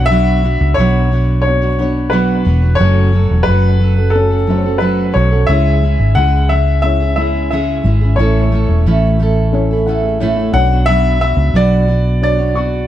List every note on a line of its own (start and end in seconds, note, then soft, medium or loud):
0.00 0.57 B1 medium
0.00 0.85 B3 medium
0.00 0.10 D4 medium
0.00 0.85 D4 medium
0.00 0.10 F#4 medium
0.00 0.85 F#4 medium
0.00 0.11 C#5 medium
0.00 0.85 C#5 medium
0.06 0.78 E5 loud
0.10 0.44 B2 medium
0.10 0.44 F#3 medium
0.10 0.42 B3 medium
0.10 0.43 D4 medium
0.10 0.44 F#4 medium
0.10 0.45 C#5 medium
0.43 0.77 B3 medium
0.43 0.78 D4 medium
0.43 0.78 F#4 medium
0.43 0.79 C#5 medium
0.61 0.76 C#2 medium
0.74 2.42 B1 loud
0.74 1.12 B2 medium
0.74 1.40 C#5 loud
0.79 1.12 F#3 medium
0.79 1.10 B3 medium
0.79 1.11 D4 medium
0.79 1.13 F#4 medium
0.79 1.13 C#5 medium
1.12 1.62 B3 medium
1.12 1.62 D4 medium
1.12 1.62 F#4 medium
1.12 1.61 C#5 medium
1.42 1.66 B3 medium
1.42 2.13 C#5 medium
1.46 1.66 D4 medium
1.46 1.67 F#4 medium
1.46 1.67 C#5 medium
1.62 1.78 B3 soft
1.62 1.79 D4 medium
1.62 1.79 F#4 medium
1.62 1.79 C#5 medium
1.79 2.41 B3 medium
1.79 2.12 B3 medium
1.79 2.42 D4 medium
1.79 2.12 D4 medium
1.79 2.42 F#4 medium
1.79 2.12 F#4 medium
1.79 2.42 C#5 medium
1.79 2.13 C#5 medium
2.10 2.46 B2 medium
2.10 2.46 F#3 medium
2.10 2.44 B3 medium
2.10 2.45 D4 medium
2.10 2.80 B4 medium
2.14 2.46 F#4 medium
2.14 2.47 C#5 medium
2.45 2.77 E1 medium
2.45 2.62 B3 medium
2.45 2.63 D4 medium
2.45 2.62 F#4 medium
2.45 2.60 C#5 medium
2.62 2.78 B3 soft
2.62 2.79 D4 soft
2.62 2.79 F#4 medium
2.62 2.79 C#5 medium
2.75 3.11 F#3 medium
2.75 3.47 C#5 loud
2.80 3.27 F#1 loud
2.80 3.63 A3 medium
2.80 3.13 C#4 medium
2.80 3.63 C#4 medium
2.80 3.13 F#4 medium
2.80 3.64 F#4 medium
2.80 3.14 A4 medium
2.80 3.64 C#5 medium
3.12 3.45 F#3 medium
3.12 3.46 C#4 medium
3.12 3.46 F#4 medium
3.12 3.47 A4 medium
3.31 3.46 E1 medium
3.43 3.78 F#3 medium
3.43 3.79 C#4 medium
3.43 4.15 B4 loud
3.48 5.12 F#1 loud
3.48 3.80 F#4 medium
3.48 3.81 A4 medium
3.79 3.97 F#3 medium
3.79 3.97 C#4 medium
3.79 3.96 F#4 medium
3.79 3.95 A4 medium
3.96 4.32 C#4 soft
3.96 4.31 F#4 soft
3.96 4.29 A4 medium
4.10 4.35 A3 medium
4.10 4.82 A4 medium
4.15 4.35 C#4 medium
4.15 4.36 F#4 medium
4.15 4.36 C#5 medium
4.30 4.47 C#4 soft
4.30 4.48 F#4 soft
4.30 4.48 A4 medium
4.47 4.64 F#3 medium
4.47 5.11 A3 medium
4.47 4.65 C#4 medium
4.47 5.11 C#4 medium
4.47 4.64 F#4 medium
4.47 5.12 F#4 medium
4.47 4.63 A4 medium
4.47 4.56 C5 medium
4.57 5.15 C#5 medium
4.64 4.79 C#4 soft
4.64 4.81 F#4 soft
4.64 4.81 A4 medium
4.78 5.13 F#3 medium
4.78 5.14 C#4 medium
4.78 5.15 F#4 medium
4.78 5.11 B4 medium
4.82 5.16 A4 medium
5.14 5.46 B1 medium
5.14 5.31 F#3 medium
5.14 5.32 C#4 medium
5.14 5.31 F#4 medium
5.14 5.29 A4 medium
5.14 5.49 C#5 medium
5.30 5.49 C#4 soft
5.30 5.49 F#4 medium
5.30 5.48 A4 medium
5.47 5.95 C#2 loud
5.47 5.82 C#3 medium
5.47 6.32 G#3 medium
5.47 5.81 G#3 medium
5.47 6.33 C#4 medium
5.47 5.82 C#4 medium
5.47 5.83 E4 medium
5.47 6.33 E4 medium
5.47 6.17 E5 loud
5.51 5.84 G#4 medium
5.51 6.34 C#5 medium
5.82 6.16 G#3 medium
5.82 6.17 C#4 medium
5.82 6.17 E4 medium
5.86 6.18 G#4 medium
5.99 6.15 G#1 medium
6.15 7.80 C#2 loud
6.15 6.50 C#3 medium
6.15 6.49 G#3 medium
6.15 6.50 C#4 medium
6.15 6.51 E4 medium
6.15 6.51 G#4 medium
6.15 6.50 F#5 loud
6.49 7.01 G#3 medium
6.49 7.01 C#4 medium
6.49 7.01 E4 medium
6.49 6.80 E5 medium
6.54 6.99 G#4 medium
6.82 7.04 G#3 medium
6.82 7.04 C#4 medium
6.82 7.05 E4 medium
6.82 7.05 C#5 medium
6.82 7.14 E5 medium
7.00 7.17 C#4 soft
7.00 7.18 E4 medium
7.00 7.17 G#4 medium
7.16 7.79 G#3 medium
7.16 7.51 G#3 medium
7.16 7.80 C#4 medium
7.16 7.52 C#4 medium
7.16 7.80 E4 medium
7.16 7.52 E4 medium
7.16 7.80 C#5 medium
7.16 7.49 E5 medium
7.21 7.53 G#4 medium
7.50 7.85 C#3 medium
7.50 7.83 G#3 medium
7.50 7.85 C#4 medium
7.50 7.85 E4 loud
7.50 7.86 G#4 medium
7.50 8.14 E5 medium
7.84 8.15 G#1 medium
7.84 8.01 G#3 medium
7.84 8.02 C#4 medium
7.84 8.02 E4 medium
7.84 8.00 G#4 medium
8.01 8.19 C#4 medium
8.01 8.19 E4 medium
8.01 8.18 G#4 medium
8.16 8.65 A1 loud
8.16 8.52 A2 medium
8.16 9.01 A3 medium
8.16 8.51 A3 medium
8.16 9.02 C#4 medium
8.16 9.02 E4 medium
8.16 8.80 C#5 medium
8.16 9.02 C#5 medium
8.20 8.52 C#4 medium
8.20 8.53 E4 medium
8.20 8.53 A4 medium
8.52 8.85 A3 medium
8.52 8.86 C#4 medium
8.52 8.86 E4 medium
8.52 8.87 A4 medium
8.69 8.84 E1 medium
8.86 10.50 A1 loud
8.86 9.19 A2 medium
8.86 9.18 A3 medium
8.86 9.19 C#4 medium
8.86 9.20 E4 medium
8.86 9.21 A4 loud
9.19 9.70 A3 medium
9.19 9.70 C#4 medium
9.19 9.71 E4 medium
9.19 9.69 A4 medium
9.52 9.73 A3 medium
9.52 9.73 C#4 medium
9.52 9.74 E4 medium
9.52 9.74 C#5 loud
9.71 9.87 C#4 medium
9.71 9.88 E4 medium
9.71 9.87 A4 medium
9.86 10.20 A3 medium
9.86 10.20 C#4 medium
9.86 10.21 E4 medium
9.86 10.03 A4 medium
9.86 10.02 F#5 medium
9.90 10.22 A4 medium
10.03 10.19 G#4 medium
10.03 10.19 E5 medium
10.20 10.54 A2 medium
10.20 10.53 A3 medium
10.20 10.54 C#4 loud
10.20 10.36 E4 medium
10.20 10.55 E4 loud
10.20 10.55 A4 loud
10.20 10.36 C#5 medium
10.37 10.69 C#4 medium
10.37 10.69 A4 medium
10.51 11.34 B1 medium
10.51 11.60 B3 medium
10.51 10.70 B3 medium
10.51 11.60 D4 medium
10.51 11.61 F#4 medium
10.51 11.61 C#5 medium
10.51 10.88 F#5 loud
10.55 10.71 D4 medium
10.55 10.71 F#4 medium
10.55 10.70 C#5 medium
10.71 10.87 B3 soft
10.71 10.88 D4 soft
10.71 10.88 F#4 medium
10.71 10.87 C#5 medium
10.86 11.21 B2 medium
10.86 11.21 F#3 medium
10.86 11.20 B3 medium
10.86 11.21 D4 medium
10.86 11.22 F#4 medium
10.86 11.20 E5 loud
10.90 11.22 C#5 medium
11.21 11.54 B3 medium
11.21 11.55 D4 medium
11.21 11.56 F#4 medium
11.21 11.56 C#5 medium
11.21 11.56 E5 loud
11.37 11.53 C#2 medium
11.54 12.87 B1 loud
11.54 11.88 B2 medium
11.54 11.88 F#3 medium
11.54 11.87 B3 loud
11.54 11.88 D4 medium
11.54 11.89 F#4 medium
11.54 12.22 D5 loud
11.88 12.38 B3 medium
11.88 12.39 D4 medium
11.88 12.39 F#4 medium
12.21 12.42 B3 medium
12.21 12.43 D4 medium
12.21 12.43 F#4 medium
12.21 12.43 C#5 medium
12.21 12.87 D5 loud
12.39 12.54 B3 soft
12.39 12.56 D4 soft
12.39 12.56 F#4 soft
12.39 12.55 C#5 soft
12.54 12.87 B3 medium
12.54 12.87 D4 medium
12.54 12.87 F#4 medium
12.54 12.87 C#6 medium
12.58 12.87 F#4 medium